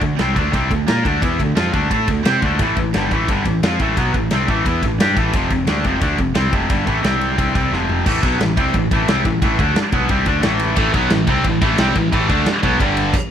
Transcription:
0.01 picked electric bass D2, distorted electric guitar D3 A3, kick, ride
0.19 picked electric bass C2, distorted electric guitar C3 G3 C4, snare, ride
0.36 picked electric bass D2, distorted electric guitar D3 A3 D4, kick, ride
0.53 picked electric bass C2, distorted electric guitar C3 G3 C4, kick, ride
0.70 picked electric bass D2, distorted electric guitar D3 A3, kick, ride
0.88 picked electric bass A#2, distorted electric guitar A#3 F4 A#4, snare, ride
1.05 picked electric bass D2, distorted electric guitar D3 A3 D4, kick, ride
1.22 picked electric bass E2, distorted electric guitar E3 B3 E4, kick, ride
1.40 picked electric bass D2, distorted electric guitar D3 A3, kick, ride
1.56 picked electric bass F2, distorted electric guitar F3 C4 F4, snare, ride
1.73 picked electric bass D2, distorted electric guitar D3 A3 D4, kick, ride
1.91 picked electric bass A2, distorted electric guitar A3 E4 A4, kick, ride
2.08 picked electric bass D2, distorted electric guitar D3 A3, kick, ride
2.25 picked electric bass C3, distorted electric guitar C4 G4 C5, snare, ride
2.42 picked electric bass D2, distorted electric guitar D3 A3 D4, kick, ride
2.59 picked electric bass A1, distorted electric guitar A2 E3 A3, kick, ride
2.77 picked electric bass A1, distorted electric guitar A2 E3, kick, ride
2.94 picked electric bass G1, distorted electric guitar G2 D3 G3, snare, ride
3.11 picked electric bass A1, distorted electric guitar A2 E3 A3, kick, ride
3.28 picked electric bass G1, distorted electric guitar G2 D3 G3, kick, ride
3.45 picked electric bass A1, distorted electric guitar A2 E3, kick, ride
3.62 picked electric bass F2, distorted electric guitar F3 C4 F4, snare, ride
3.79 picked electric bass A1, distorted electric guitar A2 E3 A3, kick, ride
3.97 picked electric bass B1, distorted electric guitar B2 F#3 B3, kick, ride
4.14 picked electric bass A1, distorted electric guitar A2 E3, kick, ride
4.31 picked electric bass C2, distorted electric guitar C3 G3 C4, snare, ride
4.48 picked electric bass A1, distorted electric guitar A2 E3 A3, kick, ride
4.66 picked electric bass E2, distorted electric guitar E3 B3 E4, kick, ride
4.83 picked electric bass A1, distorted electric guitar A2 E3, kick, ride
4.98 picked electric bass G2, distorted electric guitar G3 D4 G4, snare, ride
5.16 picked electric bass A1, distorted electric guitar A2 E3 A3, kick, ride
5.33 picked electric bass F1, distorted electric guitar F2 C3 F3, kick, ride
5.50 picked electric bass F1, distorted electric guitar F2 C3, kick, ride
5.67 picked electric bass D2, distorted electric guitar D3 A3 D4, snare, ride
5.84 picked electric bass F1, distorted electric guitar F2 C3 F3, kick, ride
6.00 picked electric bass D2, distorted electric guitar D3 A3 D4, kick, ride
6.18 picked electric bass F1, distorted electric guitar F2 C3, kick, ride
6.35 picked electric bass C2, distorted electric guitar C3 G3 C4, snare, ride
6.52 picked electric bass F1, distorted electric guitar F2 C3 F3, kick, ride
6.69 picked electric bass G1, distorted electric guitar G2 D3 G3, kick, ride
6.86 picked electric bass A1, distorted electric guitar A2 E3 A3, kick, ride
7.04 picked electric bass C2, distorted electric guitar C3 G3 C4, snare, ride
7.21 ride
7.37 picked electric bass C2, distorted electric guitar C3 G3 C4, kick, ride
7.55 picked electric bass C2, distorted electric guitar C3 G3 C4, kick, ride
7.72 picked electric bass F1, distorted electric guitar F2 C3 F3, snare
7.89 floor tom
8.06 picked electric bass A1, distorted electric guitar A2 E3 A3, kick, crash
8.23 picked electric bass B1, distorted electric guitar B2 F#3 B3, kick, ride
8.40 picked electric bass A1, distorted electric guitar A2 E3, snare, ride
8.57 picked electric bass C2, distorted electric guitar C3 G3 C4, kick, ride
8.67 snare
8.74 picked electric bass A1, distorted electric guitar A2 E3, kick, ride
8.91 picked electric bass A1, distorted electric guitar A2 E3 A3, kick, ride
9.08 picked electric bass C2, distorted electric guitar C3 G3 C4, snare, ride
9.25 picked electric bass A1, distorted electric guitar A2 E3, kick, ride
9.42 picked electric bass A1, distorted electric guitar A2 E3 A3, kick, ride
9.59 picked electric bass D2, distorted electric guitar D3 A3 D4, kick, ride
9.76 snare, ride
9.92 picked electric bass B1, distorted electric guitar B2 F#3 B3, kick, ride
10.09 picked electric bass C2, distorted electric guitar C3 G3 C4, kick, ride
10.26 picked electric bass D2, distorted electric guitar D3 A3 D4, kick, ride
10.43 picked electric bass A1, distorted electric guitar A2 E3 A3, snare, ride
10.60 ride
10.76 picked electric bass A1, distorted electric guitar A2 E3 A3, kick, ride
10.94 picked electric bass B1, distorted electric guitar B2 F#3 B3, kick, ride
11.10 picked electric bass A1, distorted electric guitar A2 E3, snare, ride
11.27 picked electric bass C2, distorted electric guitar C3 G3 C4, kick, ride
11.44 picked electric bass A1, distorted electric guitar A2 E3, kick, ride
11.62 picked electric bass A1, distorted electric guitar A2 E3 A3, kick, ride
11.78 picked electric bass C2, distorted electric guitar C3 G3 C4, snare, ride
11.95 picked electric bass A1, distorted electric guitar A2 E3, kick, ride
12.12 picked electric bass A1, distorted electric guitar A2 E3 A3, kick, ride
12.29 picked electric bass D2, distorted electric guitar D3 A3 D4, kick, ride
12.46 snare, ride
12.63 picked electric bass B1, distorted electric guitar B2 F#3 B3, kick, ride
12.79 picked electric bass G1, distorted electric guitar G2 D3 G3, kick, ride
12.97 ride
13.14 kick, crash

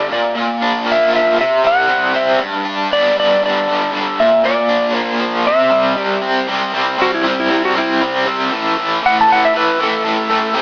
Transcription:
0.09 overdriven electric guitar A#2, electric slide guitar D5
0.35 overdriven electric guitar A#2
0.62 overdriven electric guitar D4
0.86 overdriven electric guitar A#3
0.92 electric slide guitar E5
1.13 overdriven electric guitar F3, electric slide guitar E5
1.38 overdriven electric guitar C3, electric slide guitar E5
1.64 overdriven electric guitar G3, electric slide guitar F#5
1.89 overdriven electric guitar C3
2.15 overdriven electric guitar C4, electric slide guitar E5
2.40 overdriven electric guitar G2
2.65 overdriven electric guitar D4
2.91 overdriven electric guitar B3, electric slide guitar D5
3.16 overdriven electric guitar G3, electric slide guitar D5
3.42 overdriven electric guitar D3, electric slide guitar D5
3.68 overdriven electric guitar G3
3.92 overdriven electric guitar D3
4.19 overdriven electric guitar A#2, electric slide guitar E5
4.45 overdriven electric guitar A#2, electric slide guitar D5
4.70 overdriven electric guitar D4
4.95 overdriven electric guitar A#3, electric slide guitar C5
5.20 overdriven electric guitar F3
5.45 overdriven electric guitar C3, electric slide guitar E5
5.71 overdriven electric guitar G3
5.97 overdriven electric guitar C3, electric slide guitar D5
6.22 overdriven electric guitar C4
6.47 overdriven electric guitar C3 G3 C4
6.73 overdriven electric guitar C3 G3 C4
6.98 overdriven electric guitar C3 G3 C4, electric slide guitar F#4
7.14 electric slide guitar E4
7.24 overdriven electric guitar C3 G3 C4
7.40 electric slide guitar E4
7.49 overdriven electric guitar C3 G3 C4
7.65 electric slide guitar F#4
7.75 overdriven electric guitar C3 G3 C4, electric slide guitar E4
8.01 overdriven electric guitar C3 G3 C4
8.27 overdriven electric guitar C3 G3 C4
8.52 overdriven electric guitar A2 E3 A3
8.78 overdriven electric guitar A2 E3 A3
9.02 overdriven electric guitar A2 E3 A3, electric slide guitar F#5
9.21 electric slide guitar A5
9.28 overdriven electric guitar A2 E3 A3, electric slide guitar F#5
9.45 electric slide guitar E5
9.54 overdriven electric guitar A2 E3 A3, electric slide guitar B4
9.79 overdriven electric guitar A2 E3 A3
9.83 electric slide guitar A4
10.04 overdriven electric guitar A2 E3 A3
10.29 overdriven electric guitar A2 E3 A3
10.54 overdriven electric guitar C3 G3 C4

